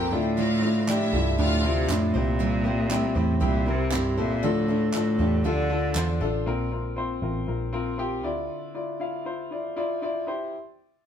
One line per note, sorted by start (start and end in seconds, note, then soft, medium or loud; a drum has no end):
0.00 0.12 A#1 medium
0.00 0.14 F2 medium
0.00 0.13 A#2 medium
0.00 0.11 A#3 medium
0.00 0.12 C4 medium
0.00 0.14 C4 medium
0.00 0.12 F4 medium
0.00 0.13 F4 medium
0.00 0.14 G4 medium
0.00 0.22 G4 medium
0.00 0.14 A4 medium
0.00 0.11 A#4 medium
0.00 0.13 A#4 medium
0.00 0.13 C5 medium
0.00 0.22 G5 loud
0.11 0.59 D2 medium
0.11 1.16 A2 loud
0.11 0.84 D3 medium
0.11 0.52 D4 medium
0.11 0.37 D4 medium
0.11 0.53 E4 medium
0.11 0.37 E4 medium
0.11 0.53 F4 medium
0.11 0.37 A4 medium
0.37 0.62 D3 medium
0.37 0.63 F3 medium
0.37 0.63 D4 medium
0.37 0.62 E4 loud
0.37 0.85 F4 loud
0.37 0.60 A4 loud
0.37 0.85 F5 loud
0.62 0.81 D4 medium
0.62 0.87 D4 soft
0.62 0.81 E4 medium
0.62 0.87 E4 medium
0.62 0.81 F4 medium
0.62 0.87 A4 medium
0.87 1.13 F3 medium
0.87 1.13 D4 medium
0.87 1.06 D4 loud
0.87 1.12 E4 medium
0.87 1.07 E4 medium
0.87 1.36 E4 medium
0.87 1.07 G4 loud
0.87 1.11 A4 medium
0.87 1.36 E5 loud
0.87 clap medium
1.12 1.37 C2 medium
1.12 1.38 G2 medium
1.12 1.31 D4 medium
1.12 1.37 D4 soft
1.12 1.38 E4 medium
1.12 1.32 E4 medium
1.12 1.32 F4 medium
1.12 1.38 A4 medium
1.38 1.86 D2 loud
1.38 1.67 A2 loud
1.38 1.64 D3 medium
1.38 1.64 F3 medium
1.38 1.64 D4 medium
1.38 1.57 D4 medium
1.38 1.64 E4 medium
1.38 1.57 E4 medium
1.38 1.86 F4 loud
1.38 1.58 G4 medium
1.38 1.62 A4 medium
1.38 1.86 F5 loud
1.63 1.92 C3 loud
1.63 1.82 D4 medium
1.63 1.88 D4 soft
1.63 1.89 E4 medium
1.63 1.83 E4 medium
1.63 1.83 F4 medium
1.63 1.89 A4 medium
1.89 2.13 F2 medium
1.89 2.17 A2 loud
1.89 2.14 F3 medium
1.89 2.08 D4 medium
1.89 2.15 D4 medium
1.89 2.08 E4 medium
1.89 2.14 E4 medium
1.89 2.08 F4 medium
1.89 2.13 A4 medium
1.89 clap loud
2.14 3.12 C2 medium
2.14 3.19 A#2 loud
2.14 2.87 C3 medium
2.14 2.55 C4 medium
2.14 2.39 C4 soft
2.14 2.39 E4 medium
2.14 2.56 E4 medium
2.14 2.56 G4 medium
2.14 2.39 C5 medium
2.39 2.65 C3 medium
2.39 2.65 G3 medium
2.39 2.65 C4 loud
2.39 2.64 E4 medium
2.39 2.63 C5 loud
2.64 2.84 C4 medium
2.64 2.89 C4 soft
2.64 2.84 E4 medium
2.64 2.90 E4 medium
2.64 2.84 G4 medium
2.64 2.90 C5 medium
2.89 3.16 G3 medium
2.89 3.16 C4 medium
2.89 3.09 C4 medium
2.89 3.09 E4 medium
2.89 3.15 E4 medium
2.89 3.09 G4 medium
2.89 3.14 C5 medium
2.89 clap medium
3.15 3.40 E2 medium
3.15 3.42 A2 medium
3.15 3.34 C4 medium
3.15 3.40 C4 soft
3.15 3.34 E4 medium
3.15 3.40 E4 medium
3.15 3.35 G4 medium
3.15 3.41 C5 medium
3.40 4.43 C2 loud
3.40 3.66 C3 medium
3.40 3.67 G3 medium
3.40 3.59 C4 medium
3.40 3.67 C4 medium
3.40 3.60 E4 medium
3.40 3.66 E4 medium
3.40 3.60 G4 medium
3.40 3.65 C5 medium
3.44 3.71 A#2 loud
3.66 3.96 C3 medium
3.66 3.85 C4 medium
3.66 3.92 C4 medium
3.66 3.85 E4 medium
3.66 3.92 E4 medium
3.66 3.85 A#4 medium
3.66 3.92 C5 medium
3.91 4.21 G2 loud
3.91 4.18 G3 medium
3.91 4.10 C4 medium
3.91 4.18 C4 medium
3.91 4.10 E4 medium
3.91 4.17 E4 medium
3.91 4.11 G4 medium
3.91 4.16 C5 medium
3.91 clap loud
4.17 4.47 A#2 loud
4.17 4.36 C4 medium
4.17 4.43 C4 soft
4.17 4.36 E4 medium
4.17 4.43 E4 medium
4.17 4.36 A4 medium
4.17 4.43 C5 medium
4.42 5.16 D2 loud
4.42 4.95 A2 loud
4.42 4.68 D3 medium
4.42 5.15 D3 medium
4.42 4.68 F3 medium
4.42 4.61 D4 medium
4.42 4.69 D4 medium
4.42 4.61 F4 medium
4.42 4.68 F4 medium
4.42 4.62 A4 loud
4.42 4.67 A4 loud
4.68 4.86 D4 medium
4.68 4.93 D4 medium
4.68 4.87 F4 medium
4.68 4.94 F4 medium
4.68 4.94 A4 medium
4.68 4.87 A4 medium
4.93 5.47 A2 loud
4.93 5.19 F3 medium
4.93 5.12 D4 medium
4.93 5.19 D4 medium
4.93 5.12 F4 medium
4.93 5.19 F4 medium
4.93 5.13 A4 medium
4.93 5.17 A4 medium
4.93 clap medium
5.19 5.43 E2 medium
5.19 5.38 D4 medium
5.19 5.44 D4 soft
5.19 5.44 F4 medium
5.19 5.38 F4 medium
5.19 5.38 G4 medium
5.19 5.44 A4 medium
5.44 5.92 D2 loud
5.44 5.70 D3 medium
5.44 6.22 D3 loud
5.44 5.70 F3 medium
5.44 5.63 D4 medium
5.44 5.70 D4 medium
5.44 5.63 F4 medium
5.44 5.70 F4 medium
5.44 5.63 A4 loud
5.44 5.68 A4 medium
5.70 5.89 D4 medium
5.70 5.94 D4 soft
5.70 5.89 F4 medium
5.70 5.95 F4 soft
5.70 5.95 A4 medium
5.70 5.89 A4 medium
5.95 6.19 E2 medium
5.95 6.20 F3 medium
5.95 6.14 D4 medium
5.95 6.21 D4 medium
5.95 6.14 F4 medium
5.95 6.21 F4 medium
5.95 6.20 A4 medium
5.95 6.14 C5 medium
5.95 clap loud
6.20 6.45 A1 medium
6.20 6.39 D4 medium
6.20 6.47 D4 soft
6.20 6.39 F4 medium
6.20 6.47 F4 medium
6.20 6.46 A4 medium
6.20 6.39 A4 medium
6.46 7.19 A#1 loud
6.46 7.19 A#2 medium
6.46 6.65 C4 medium
6.46 6.65 F4 medium
6.46 6.65 A#4 loud
6.72 6.90 C4 medium
6.72 6.90 F4 medium
6.72 6.91 A#4 medium
6.96 7.15 C4 medium
6.96 7.15 F4 medium
6.96 7.16 C5 medium
7.22 7.46 A1 medium
7.22 7.41 C4 medium
7.22 7.41 F4 medium
7.22 7.41 A#4 medium
7.47 8.24 A#1 medium
7.47 7.66 C4 medium
7.47 7.66 F4 medium
7.47 7.66 A#4 medium
7.73 7.91 C4 medium
7.73 7.92 F4 medium
7.73 7.92 A#4 loud
7.98 8.17 C4 medium
7.98 8.17 F4 medium
7.98 8.17 G4 loud
8.23 8.48 D2 medium
8.23 8.96 D3 medium
8.23 8.64 E4 medium
8.23 8.65 F4 medium
8.23 8.65 D5 medium
8.74 8.93 E4 medium
8.74 8.93 F4 medium
8.74 8.93 D5 medium
9.00 9.18 E4 medium
9.00 9.19 F4 medium
9.00 9.19 F5 medium
9.25 9.44 E4 medium
9.25 9.44 F4 medium
9.25 9.44 C5 medium
9.51 9.69 E4 medium
9.51 9.70 F4 medium
9.51 9.70 D5 medium
9.76 9.95 E4 medium
9.76 9.95 F4 medium
9.76 9.95 D5 medium
10.02 10.20 E4 medium
10.02 10.21 F4 medium
10.02 10.21 D5 medium
10.27 10.48 E4 medium
10.27 10.48 G4 medium
10.27 10.48 C5 medium